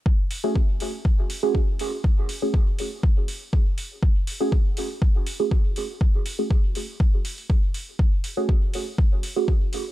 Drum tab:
HH |--o---o---o---o-|--o---o---o---o-|--o---o---o---o-|--o---o---oo--o-|
BD |o---o---o---o---|o---o---o---o---|o---o---o---o---|o---o---o---o---|

HH |--o---o---o---o-|
BD |o---o---o---o---|